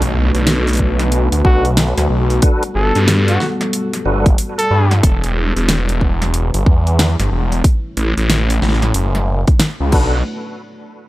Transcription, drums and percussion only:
0.02 closed hi-hat
0.35 closed hi-hat
0.47 snare, closed hi-hat
0.67 closed hi-hat
0.69 closed hi-hat
0.73 closed hi-hat
0.75 closed hi-hat
0.77 kick, closed hi-hat
0.99 snare, closed hi-hat
1.12 closed hi-hat
1.32 closed hi-hat
1.45 kick
1.65 closed hi-hat
1.77 snare, closed hi-hat
1.98 snare, closed hi-hat
2.30 closed hi-hat
2.42 kick, closed hi-hat
2.63 closed hi-hat
2.95 closed hi-hat
3.08 snare, closed hi-hat
3.28 closed hi-hat
3.40 snare
3.61 snare, closed hi-hat
3.73 closed hi-hat
3.93 snare, closed hi-hat
4.26 kick, closed hi-hat
4.38 closed hi-hat
4.59 closed hi-hat
4.91 snare, closed hi-hat
5.03 kick, closed hi-hat
5.24 closed hi-hat
5.57 closed hi-hat
5.69 snare, closed hi-hat
5.89 closed hi-hat
6.01 kick
6.22 snare, closed hi-hat
6.34 closed hi-hat
6.54 closed hi-hat
6.66 kick
6.87 closed hi-hat
6.99 snare, closed hi-hat
7.20 snare, closed hi-hat
7.52 closed hi-hat
7.64 kick, closed hi-hat
7.97 closed hi-hat
8.18 closed hi-hat
8.30 snare, closed hi-hat
8.50 closed hi-hat
8.62 snare
8.69 snare
8.73 snare
8.82 snare, closed hi-hat
8.94 closed hi-hat
9.15 snare, closed hi-hat
9.47 kick, closed hi-hat
9.60 snare, closed hi-hat
9.92 kick, crash

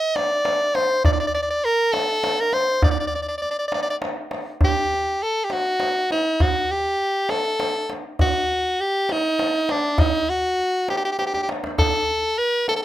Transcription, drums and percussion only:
0.16 tombak tek
0.45 tombak tek
0.75 tombak tek
1.05 tombak dum
1.94 tombak tek
2.24 tombak tek
2.53 tombak tek
2.82 tombak dum
3.12 tombak ka
3.42 tombak ka
3.72 tombak tek
4.02 tombak tek
4.31 tombak tek
4.61 tombak dum
4.91 tombak ka
5.50 tombak tek
5.80 tombak tek
6.11 tombak tek
6.40 tombak dum
6.70 tombak ka
7.29 tombak tek
7.60 tombak tek
7.90 tombak tek
8.19 tombak dum
8.50 tombak ka
9.09 tombak tek
9.39 tombak tek
9.69 tombak tek
9.98 tombak dum
10.59 tombak ka
10.88 tombak tek
11.19 tombak tek
11.34 tombak ka
11.49 tombak tek
11.64 tombak ka
11.78 tombak dum
12.09 tombak ka
12.68 tombak tek

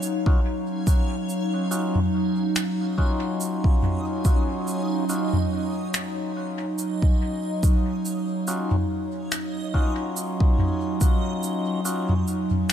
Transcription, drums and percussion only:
0.03 shaker
0.26 kick
0.87 kick, shaker
1.29 shaker
1.72 shaker
1.95 mid tom
2.56 finger snap, shaker
2.98 kick
3.40 shaker
3.64 kick
3.83 mid tom
4.25 kick, shaker
4.67 shaker
5.09 shaker
5.33 mid tom
5.94 finger snap, shaker
6.79 shaker
7.02 kick
7.63 kick, shaker
8.05 shaker
8.48 shaker
8.71 mid tom
9.32 finger snap, shaker
9.74 kick
10.17 shaker
10.40 kick
10.59 mid tom
11.01 kick, shaker
11.43 shaker
11.85 shaker
12.09 mid tom
12.27 shaker
12.51 mid tom
12.70 finger snap, shaker

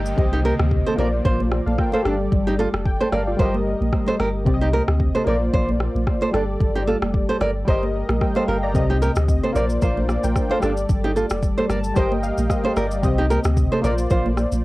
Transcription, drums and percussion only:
0.06 shaker
0.18 kick, low conga
0.45 high conga
0.59 cross-stick
0.71 kick
0.87 high conga
0.98 low conga
1.25 kick, low conga
1.40 high conga
1.52 cross-stick
1.68 high conga
1.78 kick, cross-stick
1.92 high conga
2.05 cross-stick
2.32 kick, low conga
2.59 high conga
2.74 cross-stick
2.85 kick
3.01 high conga
3.12 cross-stick, low conga
3.39 kick, low conga
3.55 high conga
3.82 high conga
3.93 kick, cross-stick
4.07 high conga
4.20 cross-stick
4.46 kick, low conga
4.73 high conga
4.88 cross-stick
5.00 kick
5.15 high conga
5.27 low conga
5.53 kick, low conga
5.69 high conga
5.80 cross-stick
5.96 high conga
6.07 kick, cross-stick
6.21 high conga
6.34 cross-stick
6.61 kick, low conga
6.87 high conga
7.02 cross-stick, high conga
7.14 kick
7.30 high conga
7.41 cross-stick, low conga
7.68 kick, low conga
7.83 high conga
8.09 cross-stick, high conga
8.21 kick, cross-stick
8.35 high conga
8.75 kick, low conga, shaker
9.02 high conga, shaker
9.16 cross-stick, shaker
9.28 kick, shaker
9.44 high conga
9.55 low conga, shaker
9.70 shaker
9.82 kick, low conga, shaker
9.97 high conga
10.09 cross-stick, shaker
10.24 high conga, shaker
10.36 kick, cross-stick, shaker
10.50 high conga
10.62 cross-stick, shaker
10.77 shaker
10.89 kick, low conga, shaker
11.16 high conga, shaker
11.30 cross-stick, shaker
11.43 kick, shaker
11.58 high conga
11.70 cross-stick, low conga, shaker
11.84 shaker
11.96 kick, low conga, shaker
12.12 high conga
12.23 shaker
12.38 high conga, shaker
12.50 kick, cross-stick, shaker
12.64 high conga
12.77 cross-stick, shaker
12.91 shaker
13.03 kick, low conga, shaker
13.30 high conga, shaker
13.44 cross-stick, shaker
13.57 kick, shaker
13.73 high conga
13.84 low conga, shaker
13.98 shaker
14.10 kick, low conga, shaker
14.26 high conga
14.37 cross-stick, shaker
14.52 high conga, shaker

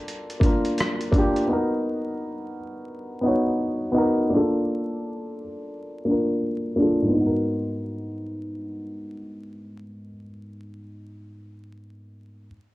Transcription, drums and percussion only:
0.08 closed hi-hat
0.30 closed hi-hat
0.41 kick, closed hi-hat
0.65 closed hi-hat
0.78 cross-stick, closed hi-hat
1.01 closed hi-hat
1.13 kick, closed hi-hat
1.36 closed hi-hat

